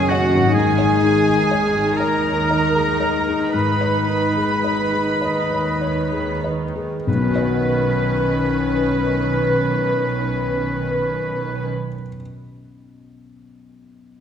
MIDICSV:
0, 0, Header, 1, 12, 480
1, 0, Start_track
1, 0, Key_signature, 5, "major"
1, 0, Tempo, 936037
1, 278, Time_signature, 6, 3, 24, 8
1, 765, Tempo, 985222
1, 1245, Tempo, 1052632
1, 1725, Tempo, 1111111
1, 2205, Tempo, 1176471
1, 2685, Tempo, 1250000
1, 3165, Tempo, 1276596
1, 5848, End_track
2, 0, Start_track
2, 0, Title_t, "Flute section"
2, 0, Program_c, 0, 73
2, 50, Note_on_c, 0, 78, 54
2, 277, Note_on_c, 0, 80, 53
2, 282, Note_off_c, 0, 78, 0
2, 989, Note_off_c, 0, 80, 0
2, 999, Note_on_c, 0, 82, 58
2, 1723, Note_off_c, 0, 82, 0
2, 1724, Note_on_c, 0, 83, 40
2, 2923, Note_off_c, 0, 83, 0
2, 3163, Note_on_c, 0, 71, 37
2, 4888, Note_off_c, 0, 71, 0
2, 5848, End_track
3, 0, Start_track
3, 0, Title_t, "Violin section"
3, 0, Program_c, 1, 48
3, 45, Note_on_c, 1, 78, 53
3, 278, Note_on_c, 1, 80, 67
3, 279, Note_off_c, 1, 78, 0
3, 989, Note_off_c, 1, 80, 0
3, 996, Note_on_c, 1, 82, 51
3, 1708, Note_off_c, 1, 82, 0
3, 1717, Note_on_c, 1, 83, 44
3, 2905, Note_off_c, 1, 83, 0
3, 3164, Note_on_c, 1, 71, 42
3, 4889, Note_off_c, 1, 71, 0
3, 5848, End_track
4, 0, Start_track
4, 0, Title_t, "Violin section"
4, 0, Program_c, 2, 48
4, 57, Note_on_c, 2, 78, 56
4, 285, Note_off_c, 2, 78, 0
4, 292, Note_on_c, 2, 80, 70
4, 996, Note_off_c, 2, 80, 0
4, 1006, Note_on_c, 2, 82, 57
4, 1727, Note_off_c, 2, 82, 0
4, 1734, Note_on_c, 2, 83, 49
4, 2928, Note_off_c, 2, 83, 0
4, 3171, Note_on_c, 2, 71, 55
4, 4892, Note_off_c, 2, 71, 0
4, 5848, End_track
5, 0, Start_track
5, 0, Title_t, "Clarinet"
5, 0, Program_c, 3, 71
5, 2448, Note_on_c, 3, 75, 44
5, 2686, Note_on_c, 3, 73, 36
5, 2692, Note_off_c, 3, 75, 0
5, 2923, Note_on_c, 3, 71, 34
5, 2928, Note_off_c, 3, 73, 0
5, 3165, Note_off_c, 3, 71, 0
5, 5848, End_track
6, 0, Start_track
6, 0, Title_t, "Felt piano"
6, 0, Program_c, 4, 0
6, 0, Control_c, 4, 64, 127
6, 0, Note_on_c, 4, 35, 47
6, 0, Note_on_c, 4, 61, 39
6, 0, Note_on_c, 4, 66, 41
6, 0, Note_on_c, 4, 73, 44
6, 0, Note_on_c, 4, 75, 36
6, 56, Note_off_c, 4, 75, 0
6, 56, Note_on_c, 4, 75, 41
6, 117, Note_off_c, 4, 73, 0
6, 167, Note_on_c, 4, 73, 39
6, 238, Note_off_c, 4, 75, 0
6, 261, Note_off_c, 4, 35, 0
6, 282, Note_off_c, 4, 73, 0
6, 285, Note_on_c, 4, 44, 42
6, 289, Control_c, 4, 64, 0
6, 290, Note_off_c, 4, 61, 0
6, 291, Note_off_c, 4, 66, 0
6, 383, Control_c, 4, 64, 127
6, 402, Note_on_c, 4, 75, 39
6, 526, Note_on_c, 4, 63, 30
6, 595, Note_off_c, 4, 75, 0
6, 651, Note_on_c, 4, 68, 32
6, 719, Note_off_c, 4, 63, 0
6, 775, Note_on_c, 4, 75, 37
6, 841, Note_off_c, 4, 68, 0
6, 893, Note_on_c, 4, 68, 27
6, 960, Note_off_c, 4, 75, 0
6, 1013, Note_on_c, 4, 75, 31
6, 1080, Note_off_c, 4, 68, 0
6, 1143, Note_on_c, 4, 73, 26
6, 1202, Note_off_c, 4, 75, 0
6, 1255, Note_off_c, 4, 73, 0
6, 1258, Note_on_c, 4, 75, 26
6, 1371, Note_on_c, 4, 68, 30
6, 1440, Note_off_c, 4, 75, 0
6, 1486, Note_on_c, 4, 75, 27
6, 1558, Note_off_c, 4, 68, 0
6, 1607, Note_on_c, 4, 68, 28
6, 1678, Note_off_c, 4, 75, 0
6, 1710, Note_off_c, 4, 44, 0
6, 1729, Note_on_c, 4, 44, 28
6, 1734, Control_c, 4, 64, 0
6, 1799, Note_off_c, 4, 68, 0
6, 1827, Control_c, 4, 64, 127
6, 1846, Note_on_c, 4, 75, 27
6, 1963, Note_on_c, 4, 63, 23
6, 2036, Note_off_c, 4, 75, 0
6, 2085, Note_on_c, 4, 68, 26
6, 2157, Note_off_c, 4, 63, 0
6, 2206, Note_on_c, 4, 75, 27
6, 2276, Note_off_c, 4, 68, 0
6, 2321, Note_on_c, 4, 68, 23
6, 2394, Note_off_c, 4, 75, 0
6, 2440, Note_on_c, 4, 75, 27
6, 2513, Note_off_c, 4, 68, 0
6, 2556, Note_on_c, 4, 73, 22
6, 2635, Note_off_c, 4, 75, 0
6, 2682, Note_off_c, 4, 73, 0
6, 2683, Note_on_c, 4, 75, 23
6, 2801, Note_on_c, 4, 68, 24
6, 2874, Note_off_c, 4, 75, 0
6, 2925, Note_on_c, 4, 75, 25
6, 2996, Note_off_c, 4, 68, 0
6, 3046, Note_on_c, 4, 68, 26
6, 3118, Note_off_c, 4, 75, 0
6, 3152, Note_off_c, 4, 44, 0
6, 3166, Note_off_c, 4, 68, 0
6, 3167, Note_on_c, 4, 35, 33
6, 3174, Control_c, 4, 64, 0
6, 3193, Note_on_c, 4, 47, 34
6, 3220, Note_on_c, 4, 61, 31
6, 3245, Note_on_c, 4, 66, 34
6, 3256, Control_c, 4, 64, 127
6, 3273, Note_on_c, 4, 75, 33
6, 4969, Note_off_c, 4, 35, 0
6, 4996, Note_off_c, 4, 47, 0
6, 5022, Note_off_c, 4, 61, 0
6, 5047, Note_off_c, 4, 66, 0
6, 5076, Note_off_c, 4, 75, 0
6, 5848, End_track
7, 0, Start_track
7, 0, Title_t, "Cello section"
7, 0, Program_c, 5, 48
7, 45, Note_on_c, 5, 66, 62
7, 279, Note_off_c, 5, 66, 0
7, 280, Note_on_c, 5, 68, 66
7, 990, Note_off_c, 5, 68, 0
7, 1008, Note_on_c, 5, 70, 63
7, 1728, Note_off_c, 5, 70, 0
7, 1734, Note_on_c, 5, 71, 50
7, 2912, Note_off_c, 5, 71, 0
7, 3169, Note_on_c, 5, 71, 47
7, 4891, Note_off_c, 5, 71, 0
7, 5848, End_track
8, 0, Start_track
8, 0, Title_t, "Oboe"
8, 0, Program_c, 6, 68
8, 0, Note_on_c, 6, 68, 67
8, 47, Note_on_c, 6, 66, 53
8, 55, Note_off_c, 6, 68, 0
8, 274, Note_off_c, 6, 66, 0
8, 277, Note_on_c, 6, 68, 72
8, 998, Note_on_c, 6, 70, 52
8, 1006, Note_off_c, 6, 68, 0
8, 1719, Note_off_c, 6, 70, 0
8, 1722, Note_on_c, 6, 71, 47
8, 2907, Note_off_c, 6, 71, 0
8, 3170, Note_on_c, 6, 71, 44
8, 4892, Note_off_c, 6, 71, 0
8, 5848, End_track
9, 0, Start_track
9, 0, Title_t, "Harp"
9, 0, Program_c, 7, 46
9, 188, Note_on_c, 7, 44, 38
9, 209, Note_on_c, 7, 63, 34
9, 233, Note_on_c, 7, 68, 33
9, 255, Note_on_c, 7, 75, 33
9, 2043, Note_off_c, 7, 44, 0
9, 2061, Note_off_c, 7, 63, 0
9, 2081, Note_off_c, 7, 68, 0
9, 2100, Note_off_c, 7, 75, 0
9, 3169, Note_on_c, 7, 47, 35
9, 3194, Note_on_c, 7, 59, 34
9, 3219, Note_on_c, 7, 61, 34
9, 3246, Note_on_c, 7, 66, 34
9, 3274, Note_on_c, 7, 75, 35
9, 3298, Note_on_c, 7, 78, 35
9, 4971, Note_off_c, 7, 47, 0
9, 4996, Note_off_c, 7, 59, 0
9, 5021, Note_off_c, 7, 61, 0
9, 5048, Note_off_c, 7, 66, 0
9, 5076, Note_off_c, 7, 75, 0
9, 5100, Note_off_c, 7, 78, 0
9, 5848, End_track
10, 0, Start_track
10, 0, Title_t, "French horn section"
10, 0, Program_c, 8, 60
10, 0, Note_on_c, 8, 51, 75
10, 0, Note_on_c, 8, 61, 78
10, 258, Note_off_c, 8, 61, 0
10, 261, Note_off_c, 8, 51, 0
10, 280, Note_on_c, 8, 63, 56
10, 284, Note_on_c, 8, 51, 54
10, 2981, Note_off_c, 8, 63, 0
10, 2982, Note_off_c, 8, 51, 0
10, 3163, Note_on_c, 8, 51, 40
10, 3163, Note_on_c, 8, 61, 42
10, 4888, Note_off_c, 8, 51, 0
10, 4889, Note_off_c, 8, 61, 0
10, 5848, End_track
11, 0, Start_track
11, 0, Title_t, "Viola section"
11, 0, Program_c, 10, 48
11, 0, Note_on_c, 10, 61, 76
11, 49, Note_on_c, 10, 49, 50
11, 160, Note_on_c, 10, 51, 42
11, 163, Note_off_c, 10, 49, 0
11, 263, Note_off_c, 10, 61, 0
11, 276, Note_off_c, 10, 51, 0
11, 282, Note_on_c, 10, 51, 47
11, 282, Note_on_c, 10, 63, 49
11, 392, Note_off_c, 10, 51, 0
11, 404, Note_on_c, 10, 51, 45
11, 522, Note_off_c, 10, 51, 0
11, 529, Note_on_c, 10, 51, 44
11, 646, Note_off_c, 10, 51, 0
11, 656, Note_on_c, 10, 51, 38
11, 766, Note_off_c, 10, 51, 0
11, 772, Note_on_c, 10, 51, 40
11, 884, Note_off_c, 10, 51, 0
11, 890, Note_on_c, 10, 51, 38
11, 1007, Note_off_c, 10, 51, 0
11, 1012, Note_on_c, 10, 51, 38
11, 1117, Note_off_c, 10, 51, 0
11, 1123, Note_on_c, 10, 51, 33
11, 1246, Note_off_c, 10, 51, 0
11, 1254, Note_on_c, 10, 51, 32
11, 1361, Note_off_c, 10, 51, 0
11, 1366, Note_on_c, 10, 51, 29
11, 1482, Note_off_c, 10, 51, 0
11, 1487, Note_on_c, 10, 51, 35
11, 1605, Note_off_c, 10, 51, 0
11, 1611, Note_on_c, 10, 51, 30
11, 1721, Note_off_c, 10, 51, 0
11, 1726, Note_on_c, 10, 51, 33
11, 1836, Note_off_c, 10, 51, 0
11, 1847, Note_on_c, 10, 51, 31
11, 1965, Note_off_c, 10, 51, 0
11, 1974, Note_on_c, 10, 51, 33
11, 2086, Note_off_c, 10, 51, 0
11, 2091, Note_on_c, 10, 51, 31
11, 2203, Note_off_c, 10, 51, 0
11, 2208, Note_on_c, 10, 51, 29
11, 2324, Note_off_c, 10, 51, 0
11, 2328, Note_on_c, 10, 51, 28
11, 2444, Note_off_c, 10, 51, 0
11, 2452, Note_on_c, 10, 51, 29
11, 2568, Note_off_c, 10, 51, 0
11, 2575, Note_on_c, 10, 51, 26
11, 2689, Note_off_c, 10, 51, 0
11, 2693, Note_on_c, 10, 51, 30
11, 2807, Note_off_c, 10, 51, 0
11, 2814, Note_on_c, 10, 51, 27
11, 2927, Note_off_c, 10, 51, 0
11, 2931, Note_on_c, 10, 51, 32
11, 3045, Note_off_c, 10, 63, 0
11, 3047, Note_off_c, 10, 51, 0
11, 3052, Note_on_c, 10, 51, 26
11, 3169, Note_off_c, 10, 51, 0
11, 3170, Note_on_c, 10, 61, 39
11, 3174, Note_on_c, 10, 51, 42
11, 4892, Note_off_c, 10, 61, 0
11, 4894, Note_off_c, 10, 51, 0
11, 5848, End_track
12, 0, Start_track
12, 0, Title_t, "Double bass section"
12, 0, Program_c, 11, 48
12, 0, Note_on_c, 11, 30, 59
12, 162, Note_off_c, 11, 30, 0
12, 283, Note_on_c, 11, 32, 55
12, 887, Note_off_c, 11, 32, 0
12, 1009, Note_on_c, 11, 39, 42
12, 1605, Note_off_c, 11, 39, 0
12, 1728, Note_on_c, 11, 32, 34
12, 2324, Note_off_c, 11, 32, 0
12, 2443, Note_on_c, 11, 39, 37
12, 3046, Note_off_c, 11, 39, 0
12, 3167, Note_on_c, 11, 35, 47
12, 4891, Note_off_c, 11, 35, 0
12, 5848, End_track
0, 0, End_of_file